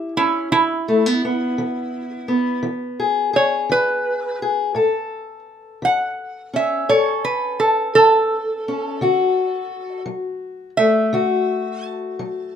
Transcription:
Already playing: steel-string acoustic guitar E4 A4
0.17 steel-string acoustic guitar C#4, resonator guitar played with a steel bar E4
0.52 steel-string acoustic guitar E3, resonator guitar played with a steel bar E4
0.88 steel-string acoustic guitar A3
1.06 steel-string acoustic guitar B3
1.25 steel-string acoustic guitar B3
1.58 steel-string acoustic guitar E3
2.28 steel-string acoustic guitar B3
2.63 steel-string acoustic guitar E3
3.00 steel-string acoustic guitar G#4
3.33 steel-string acoustic guitar G#4, resonator guitar played with a steel bar C#5
3.69 steel-string acoustic guitar E3, resonator guitar played with a steel bar B4
4.42 steel-string acoustic guitar G#4
4.75 steel-string acoustic guitar A2 A4
5.82 steel-string acoustic guitar E3, resonator guitar played with a steel bar F#5
6.53 steel-string acoustic guitar C#4, resonator guitar played with a steel bar E5
6.89 steel-string acoustic guitar A2 A4, resonator guitar played with a steel bar C#5
7.25 resonator guitar played with a steel bar B4
7.60 resonator guitar played with a steel bar A4
7.95 steel-string acoustic guitar E3, resonator guitar played with a steel bar A4
8.68 steel-string acoustic guitar C#4
9.01 steel-string acoustic guitar D3 F#4
10.06 steel-string acoustic guitar F#3
10.77 steel-string acoustic guitar A3, resonator guitar played with a steel bar E5
11.13 steel-string acoustic guitar D3 F#4
11.83 resonator guitar played with a steel bar A5
12.19 steel-string acoustic guitar F#3

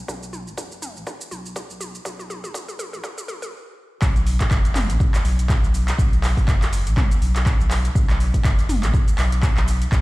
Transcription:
0.08 sub bass B1, kick, mid tom, shaker
0.23 shaker
0.33 mid tom, shaker
0.47 sub bass F#1, shaker
0.58 kick, mid tom, shaker
0.72 shaker
0.82 mid tom, shaker
0.96 sub bass B1, shaker
1.07 kick, mid tom, shaker
1.21 shaker
1.31 sub bass B1, mid tom, shaker
1.46 shaker
1.56 kick, mid tom, shaker
1.70 sub bass B1, shaker
1.81 mid tom, shaker
1.95 shaker
2.05 sub bass B1, kick, mid tom, shaker
2.19 mid tom, shaker
2.30 mid tom, shaker
2.44 sub bass F#1, mid tom, shaker
2.54 kick, mid tom, shaker
2.68 mid tom, shaker
2.79 mid tom, shaker
2.93 sub bass B1, mid tom, shaker
3.04 kick, mid tom, shaker
3.18 mid tom, shaker
3.28 sub bass F#1, mid tom, shaker
3.42 mid tom, shaker
4.02 sub bass B1, kick, clap, shaker
4.16 closed hi-hat, shaker
4.27 open hi-hat, shaker
4.41 sub bass F#1, kick, clap, closed hi-hat, shaker
4.51 kick, clap, shaker
4.65 closed hi-hat, shaker
4.76 clap, open hi-hat, mid tom, shaker
4.90 sub bass B1, closed hi-hat, shaker
5.00 kick, shaker
5.14 clap, closed hi-hat, shaker
5.25 sub bass B1, open hi-hat, shaker
5.39 closed hi-hat, shaker
5.49 kick, clap, shaker
5.63 sub bass B1, shaker
5.74 open hi-hat, shaker
5.88 clap, closed hi-hat, shaker
5.99 sub bass B1, kick, shaker
6.13 closed hi-hat, shaker
6.24 clap, open hi-hat, shaker
6.37 sub bass F#1, kick, open hi-hat, shaker
6.48 kick, clap, shaker
6.62 clap, closed hi-hat, shaker
6.73 open hi-hat, shaker
6.87 sub bass B1, closed hi-hat, shaker
6.97 kick, clap, mid tom, shaker
7.11 closed hi-hat, shaker
7.21 sub bass B1, open hi-hat, shaker
7.36 clap, closed hi-hat, shaker
7.46 kick, clap, shaker
7.60 sub bass B1, shaker
7.71 clap, open hi-hat, shaker
7.85 closed hi-hat, shaker
7.95 sub bass B1, kick, shaker
8.10 clap, closed hi-hat, shaker
8.20 open hi-hat, shaker
8.34 sub bass F#1, kick, closed hi-hat, shaker
8.45 kick, clap, shaker
8.59 closed hi-hat, shaker
8.69 open hi-hat, mid tom, shaker
8.83 sub bass B1, clap, closed hi-hat, shaker
8.94 kick, shaker
9.08 closed hi-hat, shaker
9.18 sub bass B1, clap, open hi-hat, shaker
9.32 closed hi-hat, shaker
9.43 kick, clap, shaker
9.57 sub bass B1, clap, shaker
9.68 open hi-hat, shaker
9.82 closed hi-hat, shaker
9.92 sub bass B1, kick, clap, shaker

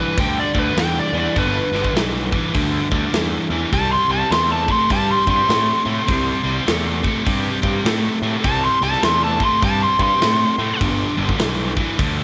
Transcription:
Already playing: overdriven electric guitar G2 E3
0.00 electric slide guitar B4
0.17 picked electric bass D2, overdriven electric guitar G2 D3, electric slide guitar G5, kick, open hi-hat
0.40 electric slide guitar D5
0.54 picked electric bass D2, overdriven electric guitar G2 D3, kick
0.59 electric slide guitar B4
0.76 picked electric bass E2, overdriven electric guitar G2 E3, electric slide guitar G5, snare, open hi-hat
0.99 electric slide guitar D5
1.12 picked electric bass E2, overdriven electric guitar G2 E3
1.19 electric slide guitar D5
1.36 picked electric bass G1, overdriven electric guitar G2 D3, electric slide guitar B4, kick, open hi-hat
1.71 picked electric bass G1, overdriven electric guitar G2 D3, snare
1.84 kick
1.93 picked electric bass B1, overdriven electric guitar G2 E3, snare, open hi-hat
2.31 overdriven electric guitar G2 E3, kick
2.54 picked electric bass D2, overdriven electric guitar G2 D3, kick, open hi-hat
2.91 picked electric bass D2, overdriven electric guitar G2 D3, kick
3.13 picked electric bass E2, overdriven electric guitar G2 E3, snare, open hi-hat
3.50 picked electric bass E2, overdriven electric guitar G2 E3
3.72 picked electric bass C2, overdriven electric guitar C3 G3, electric slide guitar A5, kick, open hi-hat
3.93 electric slide guitar C6
4.08 picked electric bass C2, overdriven electric guitar C3 G3
4.13 electric slide guitar A5
4.30 picked electric bass E2, overdriven electric guitar C3 A3, electric slide guitar C6, snare, open hi-hat
4.52 electric slide guitar A5
4.68 overdriven electric guitar C3 A3, kick
4.72 electric slide guitar C6
4.89 picked electric bass G2, overdriven electric guitar C3 G3, electric slide guitar A5, kick, open hi-hat
5.12 electric slide guitar C6
5.26 picked electric bass G2, overdriven electric guitar C3 G3, kick
5.31 electric slide guitar C6
5.48 picked electric bass A2, overdriven electric guitar C3 A3, snare, open hi-hat
5.85 picked electric bass A2, overdriven electric guitar C3 A3
6.07 picked electric bass C2, overdriven electric guitar C3 G3, kick, open hi-hat
6.44 picked electric bass C2, overdriven electric guitar C3 G3
6.66 picked electric bass E2, overdriven electric guitar C3 A3, snare, open hi-hat
7.03 overdriven electric guitar C3 A3, kick
7.25 picked electric bass G2, overdriven electric guitar C3 G3, kick, open hi-hat
7.62 picked electric bass G2, overdriven electric guitar C3 G3, kick
7.85 picked electric bass A2, overdriven electric guitar C3 A3, snare, open hi-hat
8.22 picked electric bass A2, overdriven electric guitar C3 A3
8.44 picked electric bass C2, overdriven electric guitar C3 G3, electric slide guitar A5, kick, open hi-hat
8.65 electric slide guitar C6
8.81 picked electric bass C2, overdriven electric guitar C3 G3, electric slide guitar A5, snare
8.92 snare
9.03 picked electric bass E2, overdriven electric guitar C3 A3, electric slide guitar C6, snare, open hi-hat
9.24 electric slide guitar A5
9.40 overdriven electric guitar C3 A3, kick
9.45 electric slide guitar C6
9.62 picked electric bass G2, overdriven electric guitar C3 G3, electric slide guitar A5, kick, open hi-hat
9.84 electric slide guitar C6
9.99 picked electric bass G2, overdriven electric guitar C3 G3, electric slide guitar C6, kick
10.21 picked electric bass A2, overdriven electric guitar C3 A3, snare, open hi-hat
10.58 picked electric bass A2, overdriven electric guitar C3 A3
10.81 picked electric bass G1, overdriven electric guitar G2 D3, kick, open hi-hat
11.17 picked electric bass G1, overdriven electric guitar G2 D3
11.29 kick
11.39 picked electric bass B1, overdriven electric guitar G2 E3, snare, open hi-hat
11.76 overdriven electric guitar G2 E3, kick
11.98 picked electric bass D2, overdriven electric guitar G2 D3, kick, open hi-hat

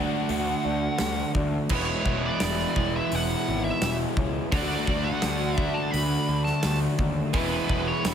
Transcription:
Already playing: overdriven electric guitar D3 A3 D4 F#4, steel-string acoustic guitar A3 D4 F#4, lead electric guitar F#5
0.28 picked electric bass D2, steel-string acoustic guitar D3 A3 D4 F#4, open hi-hat
0.63 picked electric bass D2, steel-string acoustic guitar A3 D4 F#4
0.98 picked electric bass D2, steel-string acoustic guitar D3 A3 D4 F#4, snare, open hi-hat, tambourine
1.35 picked electric bass D2, steel-string acoustic guitar A3 D4 F#4, kick
1.69 picked electric bass E1, steel-string acoustic guitar E2 B2 E3 G#3 C#4 E4, overdriven electric guitar B3, kick, crash
1.75 lead electric guitar C#5
2.05 picked electric bass E1, steel-string acoustic guitar E3 G#3 C#4 E4, kick
2.26 lead electric guitar D5
2.40 picked electric bass E1, steel-string acoustic guitar E3 G#3, snare, open hi-hat, tambourine
2.44 steel-string acoustic guitar E4
2.59 snare
2.76 picked electric bass E1, steel-string acoustic guitar E3 G#3 C#4 E4, overdriven electric guitar B3, kick
2.97 lead electric guitar E5
3.11 picked electric bass E1, steel-string acoustic guitar E2 B2 E3 G#3 C#4 E4, lead electric guitar F#5, open hi-hat
3.46 picked electric bass G#1, steel-string acoustic guitar E3 G#3 C#4 E4
3.64 lead electric guitar E5
3.82 picked electric bass E1, steel-string acoustic guitar E3 G#3 C#4, snare, open hi-hat, tambourine
3.86 steel-string acoustic guitar E4
4.17 picked electric bass C#2, steel-string acoustic guitar G#3 C#4 E4, kick
4.21 steel-string acoustic guitar E3
4.52 picked electric bass D2, steel-string acoustic guitar D3 A3 D4 F#4, lead electric guitar D5, kick, open hi-hat
4.86 picked electric bass D2, steel-string acoustic guitar D4 F#4, kick
4.90 steel-string acoustic guitar A3
5.04 lead electric guitar F#5
5.22 picked electric bass D2, steel-string acoustic guitar D3 A3 D4, snare, open hi-hat, tambourine
5.26 steel-string acoustic guitar F#4
5.58 overdriven electric guitar D3, steel-string acoustic guitar D4 F#4, lead electric guitar E5, kick
5.62 steel-string acoustic guitar A3
5.74 lead electric guitar A5
5.91 picked electric bass D2, steel-string acoustic guitar D3 A3, lead electric guitar B5, open hi-hat
5.95 steel-string acoustic guitar D4 F#4
6.29 picked electric bass D2, steel-string acoustic guitar D4 F#4
6.33 steel-string acoustic guitar A3
6.44 lead electric guitar A5, snare
6.63 picked electric bass D2, steel-string acoustic guitar D3 A3 D4, snare, open hi-hat, tambourine
6.67 steel-string acoustic guitar F#4
6.98 picked electric bass D#2, steel-string acoustic guitar A3 D4 F#4, kick
7.33 picked electric bass E1, steel-string acoustic guitar E2 B2 E3 G#3 C#4 E4, overdriven electric guitar B3, lead electric guitar B4, kick, open hi-hat
7.68 picked electric bass E1, steel-string acoustic guitar E3 G#3 C#4 E4, kick
7.88 lead electric guitar C#5
8.05 picked electric bass E1, steel-string acoustic guitar G#3 C#4 E4, snare, open hi-hat, tambourine

